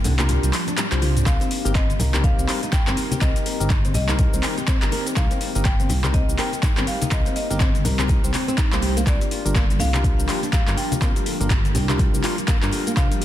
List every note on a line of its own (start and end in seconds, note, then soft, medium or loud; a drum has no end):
0.00 1.22 F3 medium
0.00 1.22 G3 medium
0.00 1.22 A#3 medium
0.00 1.22 D4 medium
0.00 1.22 G4 medium
0.00 0.25 G5 loud
0.04 0.39 C2 loud
0.04 0.12 D3 medium
0.04 open hi-hat medium
0.04 low conga loud
0.04 shaker medium
0.18 0.24 A#3 medium
0.18 0.50 D4 loud
0.18 0.50 F4 medium
0.18 0.51 G4 medium
0.18 0.51 A#4 loud
0.18 clap medium
0.18 closed hi-hat soft
0.18 high conga medium
0.18 shaker soft
0.29 closed hi-hat medium
0.29 muted conga medium
0.29 low conga loud
0.29 shaker soft
0.43 0.51 C2 medium
0.43 0.52 G3 medium
0.43 closed hi-hat soft
0.43 shaker medium
0.53 clap medium
0.53 open hi-hat medium
0.53 shaker medium
0.67 0.73 D4 medium
0.67 closed hi-hat soft
0.67 muted conga soft
0.67 shaker medium
0.77 0.85 G3 loud
0.77 clap loud
0.77 closed hi-hat medium
0.77 shaker medium
0.92 1.23 C2 loud
0.92 1.24 D4 loud
0.92 1.24 F4 medium
0.92 1.24 G4 medium
0.92 1.24 C5 loud
0.92 clap loud
0.92 closed hi-hat soft
0.92 high tom soft
0.92 shaker soft
1.02 1.15 F4 medium
1.02 open hi-hat medium
1.02 mid tom medium
1.02 muted conga medium
1.02 high conga medium
1.02 shaker medium
1.17 closed hi-hat soft
1.17 mid tom medium
1.17 shaker medium
1.26 1.38 C2 loud
1.26 9.03 D#3 medium
1.26 9.03 G3 medium
1.26 13.25 A#3 medium
1.26 1.61 C4 medium
1.26 9.03 C4 medium
1.26 1.61 D#4 medium
1.26 1.61 G4 medium
1.26 13.25 G4 medium
1.26 1.61 A#4 medium
1.26 1.76 F5 loud
1.26 kick loud
1.26 clap medium
1.26 closed hi-hat medium
1.26 shaker medium
1.40 1.50 C4 medium
1.40 closed hi-hat soft
1.40 muted conga medium
1.40 shaker medium
1.51 open hi-hat loud
1.51 shaker medium
1.65 2.01 G1 medium
1.65 1.73 C4 medium
1.65 1.73 D#4 medium
1.65 1.73 G4 medium
1.65 1.70 G4 medium
1.65 1.73 A#4 loud
1.65 closed hi-hat soft
1.65 shaker loud
1.75 1.83 C4 loud
1.75 2.25 D#5 medium
1.75 kick loud
1.75 clap medium
1.75 closed hi-hat medium
1.75 shaker medium
1.90 closed hi-hat soft
1.90 high conga medium
1.90 shaker medium
1.99 2.34 C2 loud
1.99 2.12 A#4 medium
1.99 open hi-hat medium
1.99 low conga loud
1.99 shaker loud
2.13 2.46 C4 loud
2.13 2.46 D#4 medium
2.13 2.46 G4 medium
2.13 2.46 A#4 loud
2.13 clap loud
2.13 closed hi-hat soft
2.13 high conga medium
2.13 shaker medium
2.24 2.32 D#4 loud
2.24 2.74 F5 loud
2.24 kick loud
2.24 closed hi-hat medium
2.24 muted conga medium
2.24 shaker medium
2.38 2.46 C2 medium
2.38 2.47 C4 medium
2.38 shaker medium
2.48 2.56 G3 medium
2.48 2.60 C4 medium
2.48 2.60 D#4 medium
2.48 2.60 G4 medium
2.48 2.60 A#4 medium
2.48 clap medium
2.48 open hi-hat medium
2.48 shaker medium
2.63 2.68 D#4 medium
2.63 closed hi-hat soft
2.63 muted conga soft
2.63 shaker medium
2.72 3.23 G5 loud
2.72 kick loud
2.72 clap loud
2.72 closed hi-hat medium
2.72 low conga loud
2.72 shaker medium
2.87 2.95 G1 medium
2.87 2.96 C4 medium
2.87 3.19 C4 medium
2.87 3.19 D#4 medium
2.87 3.19 G4 medium
2.87 3.19 A#4 loud
2.87 clap loud
2.87 closed hi-hat soft
2.87 shaker medium
2.97 open hi-hat medium
2.97 muted conga medium
2.97 shaker medium
3.11 3.17 G4 medium
3.11 closed hi-hat soft
3.11 high conga loud
3.11 shaker medium
3.21 3.33 C2 loud
3.21 3.29 C4 loud
3.21 3.57 C4 medium
3.21 3.57 D#4 medium
3.21 3.94 D#5 loud
3.21 kick loud
3.21 clap loud
3.21 closed hi-hat medium
3.21 high conga medium
3.21 shaker medium
3.36 closed hi-hat soft
3.36 muted conga medium
3.36 shaker medium
3.46 3.59 A#4 medium
3.46 open hi-hat medium
3.46 shaker medium
3.60 3.96 G1 medium
3.60 3.68 C4 medium
3.60 3.68 D#4 medium
3.60 3.68 G4 medium
3.60 3.68 A#4 loud
3.60 closed hi-hat soft
3.60 shaker loud
3.70 3.78 D#4 loud
3.70 kick loud
3.70 clap medium
3.70 closed hi-hat medium
3.70 shaker medium
3.84 3.94 C4 medium
3.84 closed hi-hat soft
3.84 high conga medium
3.84 shaker medium
3.94 4.29 C2 loud
3.94 4.02 G3 medium
3.94 4.88 D#5 medium
3.94 open hi-hat medium
3.94 low conga loud
3.94 shaker loud
4.09 4.41 C4 loud
4.09 4.14 D#4 medium
4.09 4.41 D#4 medium
4.09 4.41 G4 medium
4.09 4.41 A#4 loud
4.09 clap loud
4.09 closed hi-hat soft
4.09 high conga medium
4.09 shaker medium
4.19 kick loud
4.19 closed hi-hat medium
4.19 muted conga medium
4.19 low conga medium
4.19 shaker medium
4.33 4.41 C2 medium
4.33 4.42 C4 medium
4.33 shaker loud
4.43 4.55 C4 medium
4.43 4.55 D#4 medium
4.43 4.55 G4 medium
4.43 4.55 A#4 medium
4.43 clap medium
4.43 open hi-hat medium
4.43 shaker medium
4.58 4.63 G4 medium
4.58 closed hi-hat soft
4.58 muted conga soft
4.58 shaker medium
4.68 4.75 C4 loud
4.68 kick loud
4.68 clap loud
4.68 closed hi-hat medium
4.68 shaker loud
4.82 4.90 G1 medium
4.82 5.14 C4 loud
4.82 5.14 D#4 medium
4.82 5.14 G4 medium
4.82 5.14 A#4 loud
4.82 clap loud
4.82 closed hi-hat soft
4.82 shaker medium
4.92 5.05 A#4 medium
4.92 open hi-hat medium
4.92 muted conga medium
4.92 shaker medium
5.07 closed hi-hat soft
5.07 shaker loud
5.16 5.28 C2 loud
5.16 5.52 C4 medium
5.16 5.24 D#4 loud
5.16 5.52 G4 medium
5.16 5.52 A#4 medium
5.16 5.67 F5 loud
5.16 kick loud
5.16 clap loud
5.16 closed hi-hat medium
5.16 shaker loud
5.31 5.40 C4 medium
5.31 closed hi-hat soft
5.31 muted conga soft
5.31 shaker medium
5.41 5.49 G3 medium
5.41 open hi-hat medium
5.41 shaker medium
5.55 5.91 G1 medium
5.55 5.63 C4 medium
5.55 5.61 D#4 medium
5.55 5.63 D#4 medium
5.55 5.63 G4 medium
5.55 5.63 A#4 loud
5.55 closed hi-hat soft
5.55 shaker loud
5.65 6.10 G5 loud
5.65 kick loud
5.65 clap loud
5.65 closed hi-hat medium
5.65 shaker medium
5.80 5.89 C4 medium
5.80 closed hi-hat soft
5.80 high conga medium
5.80 shaker medium
5.89 6.24 C2 loud
5.89 open hi-hat medium
5.89 low conga loud
5.89 shaker loud
6.04 6.36 C4 loud
6.04 6.36 D#4 medium
6.04 6.36 G4 medium
6.04 6.09 G4 medium
6.04 6.36 A#4 loud
6.04 clap medium
6.04 closed hi-hat soft
6.04 high conga loud
6.04 shaker medium
6.14 6.22 C4 loud
6.14 6.25 D#5 loud
6.14 kick loud
6.14 closed hi-hat medium
6.14 muted conga soft
6.14 shaker medium
6.28 6.36 C2 medium
6.28 shaker loud
6.38 6.50 C4 medium
6.38 6.50 D#4 medium
6.38 6.50 G4 medium
6.38 6.50 A#4 medium
6.38 6.51 A#4 medium
6.38 6.89 G5 loud
6.38 clap medium
6.38 open hi-hat medium
6.38 shaker medium
6.53 closed hi-hat soft
6.53 muted conga soft
6.53 shaker medium
6.63 6.71 D#4 loud
6.63 kick loud
6.63 clap loud
6.63 closed hi-hat medium
6.63 low conga loud
6.63 shaker loud
6.77 6.85 G1 medium
6.77 6.86 C4 medium
6.77 7.09 C4 medium
6.77 7.09 D#4 medium
6.77 7.09 G4 medium
6.77 7.09 A#4 loud
6.77 clap loud
6.77 closed hi-hat soft
6.77 shaker medium
6.87 6.95 G3 medium
6.87 7.10 F5 loud
6.87 open hi-hat medium
6.87 muted conga medium
6.87 shaker medium
7.02 7.07 D#4 medium
7.02 closed hi-hat soft
7.02 high conga loud
7.02 shaker loud
7.11 7.23 C2 loud
7.11 7.47 C4 medium
7.11 7.47 D#4 medium
7.11 7.47 G4 medium
7.11 7.47 A#4 medium
7.11 7.35 D#5 loud
7.11 kick loud
7.11 clap medium
7.11 closed hi-hat medium
7.11 shaker loud
7.25 7.35 C4 medium
7.25 closed hi-hat soft
7.25 muted conga soft
7.25 shaker medium
7.36 8.05 D#5 medium
7.36 open hi-hat medium
7.36 shaker medium
7.50 7.86 G1 medium
7.50 7.58 C4 medium
7.50 7.58 D#4 medium
7.50 7.58 G4 medium
7.50 7.56 G4 medium
7.50 7.58 A#4 loud
7.50 closed hi-hat soft
7.50 shaker medium
7.60 7.68 C4 loud
7.60 kick loud
7.60 clap loud
7.60 closed hi-hat medium
7.60 muted conga soft
7.60 shaker medium
7.75 closed hi-hat soft
7.75 high conga medium
7.75 shaker medium
7.85 8.19 C2 loud
7.85 7.98 A#4 medium
7.85 open hi-hat medium
7.85 low conga loud
7.85 shaker loud
7.99 8.31 C4 loud
7.99 8.31 D#4 medium
7.99 8.31 G4 medium
7.99 8.31 A#4 loud
7.99 clap medium
7.99 closed hi-hat soft
7.99 high conga loud
7.99 shaker medium
8.08 8.17 D#4 loud
8.08 kick loud
8.08 closed hi-hat medium
8.08 muted conga medium
8.08 low conga medium
8.08 shaker medium
8.24 8.32 C2 medium
8.24 8.32 C4 medium
8.24 shaker loud
8.33 8.46 C4 medium
8.33 clap medium
8.33 open hi-hat medium
8.33 high conga medium
8.33 shaker medium
8.47 8.57 C4 loud
8.47 closed hi-hat soft
8.47 muted conga soft
8.47 shaker medium
8.58 kick loud
8.58 clap loud
8.58 closed hi-hat medium
8.58 shaker loud
8.72 9.04 C2 loud
8.72 8.82 A#3 medium
8.72 9.04 C4 loud
8.72 9.04 D#4 medium
8.72 9.04 G4 medium
8.72 9.04 C5 loud
8.72 clap medium
8.72 closed hi-hat soft
8.72 shaker medium
8.82 8.95 G4 medium
8.82 open hi-hat medium
8.82 muted conga medium
8.82 shaker medium
8.97 9.06 A#3 loud
8.97 closed hi-hat soft
8.97 shaker loud
9.06 9.18 C2 loud
9.06 13.25 F3 medium
9.06 9.14 G3 loud
9.06 13.25 G3 medium
9.06 9.42 D4 medium
9.06 13.25 D4 medium
9.06 9.42 F4 medium
9.06 9.42 G4 medium
9.06 9.42 A#4 medium
9.06 9.76 D5 medium
9.06 kick loud
9.06 clap medium
9.06 closed hi-hat medium
9.06 shaker medium
9.21 closed hi-hat soft
9.21 muted conga soft
9.21 shaker medium
9.31 9.44 F4 medium
9.31 open hi-hat medium
9.31 shaker medium
9.45 9.81 G1 medium
9.45 9.53 D4 medium
9.45 9.53 F4 medium
9.45 9.53 G4 medium
9.45 9.53 A#4 loud
9.45 closed hi-hat soft
9.45 shaker loud
9.55 9.63 A#3 loud
9.55 kick loud
9.55 clap loud
9.55 closed hi-hat medium
9.55 muted conga soft
9.55 shaker medium
9.70 9.79 G3 medium
9.70 closed hi-hat soft
9.70 high conga medium
9.70 shaker medium
9.79 10.14 C2 loud
9.79 9.88 D3 medium
9.79 10.52 F5 loud
9.79 open hi-hat medium
9.79 low conga loud
9.79 shaker medium
9.94 10.00 A#3 medium
9.94 10.26 D4 loud
9.94 10.26 F4 medium
9.94 10.26 G4 medium
9.94 10.26 A#4 loud
9.94 clap medium
9.94 closed hi-hat soft
9.94 high conga medium
9.94 shaker medium
10.04 kick loud
10.04 closed hi-hat medium
10.04 muted conga soft
10.04 shaker medium
10.18 10.27 C2 medium
10.18 10.27 G3 medium
10.18 shaker medium
10.28 10.40 D4 medium
10.28 10.40 F4 medium
10.28 10.42 G4 medium
10.28 10.40 G4 medium
10.28 10.40 A#4 medium
10.28 clap medium
10.28 open hi-hat medium
10.28 shaker medium
10.42 10.48 D4 medium
10.42 closed hi-hat soft
10.42 muted conga soft
10.42 shaker medium
10.53 10.61 G3 loud
10.53 10.76 F5 loud
10.53 kick loud
10.53 clap loud
10.53 closed hi-hat medium
10.53 low conga medium
10.53 shaker medium
10.67 10.75 G1 medium
10.67 10.99 D4 medium
10.67 10.99 F4 medium
10.67 10.99 G4 medium
10.67 10.99 A#4 loud
10.67 clap medium
10.67 closed hi-hat soft
10.67 shaker medium
10.77 10.90 F4 medium
10.77 11.22 G5 loud
10.77 open hi-hat medium
10.77 muted conga soft
10.77 shaker medium
10.92 closed hi-hat soft
10.92 high conga loud
10.92 shaker medium
11.02 11.13 C2 loud
11.02 11.10 A#3 loud
11.02 11.37 D4 medium
11.02 11.37 F4 medium
11.02 11.37 G4 medium
11.02 11.37 A#4 medium
11.02 kick loud
11.02 clap medium
11.02 closed hi-hat medium
11.02 shaker medium
11.16 11.25 G3 medium
11.16 closed hi-hat soft
11.16 muted conga medium
11.16 shaker medium
11.26 11.34 D3 medium
11.26 open hi-hat medium
11.26 shaker medium
11.40 11.76 G1 medium
11.40 11.46 A#3 medium
11.40 11.48 D4 medium
11.40 11.48 F4 medium
11.40 11.48 G4 medium
11.40 11.48 A#4 loud
11.40 closed hi-hat soft
11.40 shaker medium
11.50 kick loud
11.50 clap loud
11.50 closed hi-hat medium
11.50 shaker soft
11.64 11.74 G3 medium
11.64 closed hi-hat soft
11.64 high conga medium
11.64 shaker medium
11.75 12.09 C2 loud
11.75 11.88 G4 medium
11.75 open hi-hat medium
11.75 low conga loud
11.75 shaker medium
11.89 11.95 D4 medium
11.89 12.21 D4 loud
11.89 12.21 F4 medium
11.89 12.21 G4 medium
11.89 12.21 A#4 loud
11.89 clap medium
11.89 closed hi-hat soft
11.89 high conga medium
11.89 shaker soft
11.98 12.07 G3 loud
11.98 kick loud
11.98 closed hi-hat medium
11.98 muted conga medium
11.98 low conga medium
11.98 shaker medium
12.14 12.22 C2 medium
12.14 shaker medium
12.24 12.35 D4 medium
12.24 12.35 F4 medium
12.24 12.37 F4 medium
12.24 12.35 G4 medium
12.24 12.35 A#4 medium
12.24 clap medium
12.24 open hi-hat medium
12.24 shaker soft
12.38 closed hi-hat soft
12.38 muted conga soft
12.38 shaker medium
12.48 12.56 A#3 loud
12.48 kick loud
12.48 clap loud
12.48 closed hi-hat medium
12.48 shaker medium
12.62 12.71 G1 medium
12.62 12.71 G3 medium
12.62 12.94 D4 loud
12.62 12.94 F4 medium
12.62 12.94 G4 medium
12.62 12.94 A#4 loud
12.62 clap medium
12.62 closed hi-hat soft
12.62 shaker soft
12.72 12.80 D3 medium
12.72 open hi-hat medium
12.72 muted conga medium
12.72 shaker medium
12.87 12.92 A#3 medium
12.87 closed hi-hat soft
12.87 shaker medium
12.97 13.09 C2 loud
12.97 13.25 D4 medium
12.97 13.25 F4 medium
12.97 13.25 A#4 medium
12.97 13.25 F5 loud
12.97 kick loud
12.97 clap medium
12.97 closed hi-hat medium
12.97 shaker medium
13.11 13.20 G3 medium
13.11 closed hi-hat soft
13.11 muted conga medium
13.11 shaker medium
13.21 13.25 G4 medium
13.21 open hi-hat medium